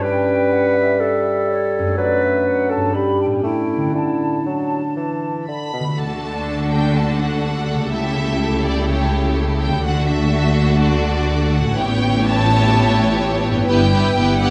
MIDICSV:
0, 0, Header, 1, 10, 480
1, 0, Start_track
1, 0, Key_signature, 2, "major"
1, 0, Tempo, 488998
1, 21, Time_signature, 4, 2, 24, 8
1, 3381, Tempo, 504626
1, 6261, Tempo, 481155
1, 14272, End_track
2, 0, Start_track
2, 0, Title_t, "Flute section"
2, 0, Program_c, 0, 73
2, 19, Note_on_c, 0, 79, 43
2, 490, Note_off_c, 0, 79, 0
2, 506, Note_on_c, 0, 78, 40
2, 726, Note_on_c, 0, 76, 46
2, 742, Note_off_c, 0, 78, 0
2, 956, Note_off_c, 0, 76, 0
2, 968, Note_on_c, 0, 76, 36
2, 1443, Note_off_c, 0, 76, 0
2, 1460, Note_on_c, 0, 73, 38
2, 1928, Note_off_c, 0, 73, 0
2, 1938, Note_on_c, 0, 74, 43
2, 2165, Note_on_c, 0, 76, 38
2, 2176, Note_off_c, 0, 74, 0
2, 2410, Note_off_c, 0, 76, 0
2, 2410, Note_on_c, 0, 78, 38
2, 2647, Note_off_c, 0, 78, 0
2, 2654, Note_on_c, 0, 81, 37
2, 2885, Note_on_c, 0, 83, 31
2, 2895, Note_off_c, 0, 81, 0
2, 3132, Note_off_c, 0, 83, 0
2, 3142, Note_on_c, 0, 79, 32
2, 3201, Note_off_c, 0, 79, 0
2, 3369, Note_on_c, 0, 79, 31
2, 3845, Note_off_c, 0, 79, 0
2, 3861, Note_on_c, 0, 81, 31
2, 5557, Note_off_c, 0, 81, 0
2, 14272, End_track
3, 0, Start_track
3, 0, Title_t, "Violin section"
3, 0, Program_c, 1, 48
3, 5319, Note_on_c, 1, 83, 41
3, 5763, Note_off_c, 1, 83, 0
3, 5786, Note_on_c, 1, 81, 43
3, 6500, Note_off_c, 1, 81, 0
3, 6508, Note_on_c, 1, 79, 46
3, 6742, Note_off_c, 1, 79, 0
3, 6753, Note_on_c, 1, 81, 49
3, 6984, Note_on_c, 1, 78, 49
3, 6990, Note_off_c, 1, 81, 0
3, 7691, Note_off_c, 1, 78, 0
3, 7708, Note_on_c, 1, 76, 56
3, 8417, Note_off_c, 1, 76, 0
3, 8436, Note_on_c, 1, 74, 47
3, 8668, Note_off_c, 1, 74, 0
3, 8680, Note_on_c, 1, 73, 46
3, 9147, Note_off_c, 1, 73, 0
3, 9395, Note_on_c, 1, 79, 52
3, 9619, Note_off_c, 1, 79, 0
3, 9627, Note_on_c, 1, 78, 55
3, 9868, Note_off_c, 1, 78, 0
3, 9870, Note_on_c, 1, 76, 53
3, 10578, Note_off_c, 1, 76, 0
3, 10593, Note_on_c, 1, 74, 54
3, 11298, Note_off_c, 1, 74, 0
3, 11311, Note_on_c, 1, 78, 59
3, 11551, Note_off_c, 1, 78, 0
3, 11556, Note_on_c, 1, 79, 70
3, 12027, Note_on_c, 1, 81, 72
3, 12033, Note_off_c, 1, 79, 0
3, 13205, Note_off_c, 1, 81, 0
3, 13455, Note_on_c, 1, 79, 67
3, 14138, Note_off_c, 1, 79, 0
3, 14178, Note_on_c, 1, 78, 57
3, 14272, Note_off_c, 1, 78, 0
3, 14272, End_track
4, 0, Start_track
4, 0, Title_t, "Clarinet"
4, 0, Program_c, 2, 71
4, 20, Note_on_c, 2, 71, 67
4, 985, Note_on_c, 2, 69, 57
4, 1000, Note_off_c, 2, 71, 0
4, 1934, Note_off_c, 2, 69, 0
4, 1940, Note_on_c, 2, 71, 62
4, 2648, Note_on_c, 2, 69, 48
4, 2662, Note_off_c, 2, 71, 0
4, 2889, Note_on_c, 2, 67, 43
4, 2904, Note_off_c, 2, 69, 0
4, 3377, Note_off_c, 2, 67, 0
4, 3392, Note_on_c, 2, 64, 43
4, 3849, Note_off_c, 2, 64, 0
4, 3855, Note_on_c, 2, 64, 45
4, 4348, Note_on_c, 2, 62, 34
4, 4362, Note_off_c, 2, 64, 0
4, 5317, Note_off_c, 2, 62, 0
4, 14272, End_track
5, 0, Start_track
5, 0, Title_t, "Violin section"
5, 0, Program_c, 3, 48
5, 5801, Note_on_c, 3, 69, 40
5, 5802, Note_on_c, 3, 66, 34
5, 7670, Note_off_c, 3, 66, 0
5, 7725, Note_on_c, 3, 67, 40
5, 9599, Note_off_c, 3, 69, 0
5, 9605, Note_off_c, 3, 67, 0
5, 9648, Note_on_c, 3, 69, 43
5, 9652, Note_on_c, 3, 66, 45
5, 11519, Note_off_c, 3, 69, 0
5, 11521, Note_off_c, 3, 66, 0
5, 11538, Note_on_c, 3, 67, 50
5, 11541, Note_on_c, 3, 73, 52
5, 13422, Note_off_c, 3, 67, 0
5, 13424, Note_off_c, 3, 73, 0
5, 13452, Note_on_c, 3, 67, 47
5, 13452, Note_on_c, 3, 71, 49
5, 13690, Note_off_c, 3, 71, 0
5, 13694, Note_off_c, 3, 67, 0
5, 13702, Note_on_c, 3, 71, 37
5, 13704, Note_on_c, 3, 67, 46
5, 13930, Note_off_c, 3, 71, 0
5, 13933, Note_off_c, 3, 67, 0
5, 13942, Note_on_c, 3, 71, 47
5, 13944, Note_on_c, 3, 67, 41
5, 14178, Note_off_c, 3, 71, 0
5, 14179, Note_off_c, 3, 67, 0
5, 14190, Note_on_c, 3, 67, 46
5, 14192, Note_on_c, 3, 71, 41
5, 14272, Note_off_c, 3, 67, 0
5, 14272, Note_off_c, 3, 71, 0
5, 14272, End_track
6, 0, Start_track
6, 0, Title_t, "Viola section"
6, 0, Program_c, 4, 48
6, 5794, Note_on_c, 4, 57, 36
6, 5794, Note_on_c, 4, 62, 36
6, 7666, Note_off_c, 4, 62, 0
6, 7713, Note_on_c, 4, 64, 39
6, 9595, Note_off_c, 4, 57, 0
6, 9599, Note_off_c, 4, 64, 0
6, 9634, Note_on_c, 4, 57, 46
6, 9634, Note_on_c, 4, 66, 45
6, 11512, Note_off_c, 4, 57, 0
6, 11512, Note_off_c, 4, 66, 0
6, 11555, Note_on_c, 4, 64, 46
6, 11561, Note_on_c, 4, 59, 49
6, 13431, Note_off_c, 4, 64, 0
6, 13434, Note_off_c, 4, 59, 0
6, 13462, Note_on_c, 4, 59, 55
6, 13462, Note_on_c, 4, 64, 49
6, 13681, Note_off_c, 4, 59, 0
6, 13685, Note_off_c, 4, 64, 0
6, 13693, Note_on_c, 4, 59, 38
6, 13696, Note_on_c, 4, 64, 44
6, 13917, Note_off_c, 4, 59, 0
6, 13919, Note_off_c, 4, 64, 0
6, 13929, Note_on_c, 4, 59, 45
6, 13931, Note_on_c, 4, 64, 40
6, 14158, Note_off_c, 4, 64, 0
6, 14162, Note_off_c, 4, 59, 0
6, 14170, Note_on_c, 4, 64, 38
6, 14174, Note_on_c, 4, 59, 39
6, 14272, Note_off_c, 4, 59, 0
6, 14272, Note_off_c, 4, 64, 0
6, 14272, End_track
7, 0, Start_track
7, 0, Title_t, "Harp"
7, 0, Program_c, 5, 46
7, 0, Note_on_c, 5, 43, 32
7, 0, Note_on_c, 5, 61, 31
7, 0, Note_on_c, 5, 64, 30
7, 0, Note_on_c, 5, 69, 31
7, 1755, Note_on_c, 5, 42, 33
7, 1800, Note_on_c, 5, 57, 28
7, 1844, Note_on_c, 5, 62, 28
7, 1866, Note_off_c, 5, 43, 0
7, 1878, Note_off_c, 5, 69, 0
7, 1888, Note_off_c, 5, 61, 0
7, 1890, Note_on_c, 5, 69, 26
7, 1908, Note_off_c, 5, 64, 0
7, 2715, Note_on_c, 5, 43, 34
7, 2759, Note_on_c, 5, 59, 26
7, 2792, Note_off_c, 5, 62, 0
7, 2803, Note_on_c, 5, 62, 23
7, 2824, Note_off_c, 5, 42, 0
7, 2846, Note_off_c, 5, 57, 0
7, 2846, Note_on_c, 5, 67, 23
7, 2891, Note_off_c, 5, 69, 0
7, 3201, Note_on_c, 5, 45, 28
7, 3235, Note_off_c, 5, 59, 0
7, 3247, Note_on_c, 5, 59, 21
7, 3289, Note_on_c, 5, 61, 24
7, 3310, Note_off_c, 5, 43, 0
7, 3322, Note_off_c, 5, 67, 0
7, 3334, Note_on_c, 5, 67, 23
7, 3354, Note_off_c, 5, 62, 0
7, 3686, Note_on_c, 5, 50, 23
7, 3726, Note_on_c, 5, 57, 21
7, 3772, Note_on_c, 5, 62, 19
7, 3792, Note_off_c, 5, 45, 0
7, 3815, Note_off_c, 5, 59, 0
7, 3815, Note_on_c, 5, 66, 20
7, 3835, Note_off_c, 5, 61, 0
7, 3857, Note_off_c, 5, 67, 0
7, 5608, Note_off_c, 5, 50, 0
7, 5619, Note_on_c, 5, 50, 29
7, 5651, Note_off_c, 5, 57, 0
7, 5662, Note_on_c, 5, 57, 23
7, 5693, Note_off_c, 5, 66, 0
7, 5704, Note_on_c, 5, 66, 25
7, 5749, Note_on_c, 5, 69, 24
7, 7526, Note_on_c, 5, 49, 30
7, 7541, Note_off_c, 5, 62, 0
7, 7561, Note_off_c, 5, 57, 0
7, 7573, Note_on_c, 5, 57, 27
7, 7617, Note_on_c, 5, 67, 28
7, 7634, Note_off_c, 5, 50, 0
7, 7652, Note_off_c, 5, 69, 0
7, 7664, Note_on_c, 5, 69, 28
7, 7678, Note_off_c, 5, 66, 0
7, 9453, Note_on_c, 5, 50, 34
7, 9486, Note_off_c, 5, 57, 0
7, 9498, Note_on_c, 5, 57, 31
7, 9543, Note_on_c, 5, 66, 31
7, 9565, Note_off_c, 5, 49, 0
7, 9577, Note_off_c, 5, 69, 0
7, 9589, Note_on_c, 5, 69, 33
7, 9610, Note_off_c, 5, 67, 0
7, 11372, Note_on_c, 5, 45, 40
7, 11414, Note_on_c, 5, 61, 34
7, 11460, Note_on_c, 5, 64, 35
7, 11480, Note_off_c, 5, 50, 0
7, 11505, Note_on_c, 5, 71, 31
7, 11525, Note_off_c, 5, 66, 0
7, 13278, Note_on_c, 5, 43, 40
7, 13323, Note_on_c, 5, 59, 35
7, 13356, Note_off_c, 5, 64, 0
7, 13368, Note_on_c, 5, 64, 34
7, 13389, Note_off_c, 5, 57, 0
7, 13398, Note_off_c, 5, 45, 0
7, 13401, Note_off_c, 5, 71, 0
7, 13413, Note_on_c, 5, 71, 36
7, 13419, Note_off_c, 5, 61, 0
7, 13465, Note_off_c, 5, 69, 0
7, 14272, Note_off_c, 5, 43, 0
7, 14272, Note_off_c, 5, 59, 0
7, 14272, Note_off_c, 5, 64, 0
7, 14272, Note_off_c, 5, 71, 0
7, 14272, End_track
8, 0, Start_track
8, 0, Title_t, "Bassoon"
8, 0, Program_c, 6, 70
8, 17, Note_on_c, 6, 55, 50
8, 1897, Note_off_c, 6, 55, 0
8, 1941, Note_on_c, 6, 54, 38
8, 2878, Note_off_c, 6, 54, 0
8, 2886, Note_on_c, 6, 55, 35
8, 3366, Note_off_c, 6, 55, 0
8, 3371, Note_on_c, 6, 57, 35
8, 3846, Note_off_c, 6, 57, 0
8, 3857, Note_on_c, 6, 50, 28
8, 4286, Note_off_c, 6, 50, 0
8, 4345, Note_on_c, 6, 54, 36
8, 4690, Note_off_c, 6, 54, 0
8, 4826, Note_on_c, 6, 52, 30
8, 5302, Note_off_c, 6, 52, 0
8, 5319, Note_on_c, 6, 50, 30
8, 5550, Note_off_c, 6, 50, 0
8, 5555, Note_on_c, 6, 47, 26
8, 5663, Note_off_c, 6, 47, 0
8, 14272, End_track
9, 0, Start_track
9, 0, Title_t, "Cello section"
9, 0, Program_c, 7, 48
9, 5792, Note_on_c, 7, 50, 36
9, 7665, Note_off_c, 7, 50, 0
9, 7706, Note_on_c, 7, 49, 39
9, 9597, Note_off_c, 7, 49, 0
9, 9635, Note_on_c, 7, 50, 45
9, 11514, Note_off_c, 7, 50, 0
9, 11556, Note_on_c, 7, 45, 47
9, 13471, Note_off_c, 7, 45, 0
9, 13472, Note_on_c, 7, 43, 53
9, 13891, Note_off_c, 7, 43, 0
9, 13948, Note_on_c, 7, 43, 54
9, 14272, Note_off_c, 7, 43, 0
9, 14272, End_track
10, 0, Start_track
10, 0, Title_t, "Double bass section"
10, 0, Program_c, 8, 48
10, 5800, Note_on_c, 8, 38, 38
10, 7669, Note_off_c, 8, 38, 0
10, 7711, Note_on_c, 8, 37, 39
10, 9599, Note_off_c, 8, 37, 0
10, 9633, Note_on_c, 8, 38, 45
10, 11513, Note_off_c, 8, 38, 0
10, 11553, Note_on_c, 8, 33, 49
10, 13459, Note_on_c, 8, 31, 57
10, 13470, Note_off_c, 8, 33, 0
10, 13885, Note_off_c, 8, 31, 0
10, 13938, Note_on_c, 8, 31, 56
10, 14272, Note_off_c, 8, 31, 0
10, 14272, End_track
0, 0, End_of_file